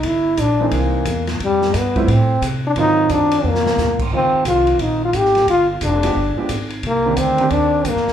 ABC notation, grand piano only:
X:1
M:4/4
L:1/8
Q:"Swing" 1/4=177
K:Cm
V:1 name="Grand piano"
z3 [=E,A,B,C_E]3 z2 | z3 [F,G,=A,C=E] z4 | [E,_G,B,CF]4- [E,G,B,CF] z3 | [E,A,CF]4- [E,A,CF] z3 |
z3 [F,A,=B,DG] z [F,A,B,DG] z2 | z [E,B,CDG]2 [E,B,CDG]3 z2 |]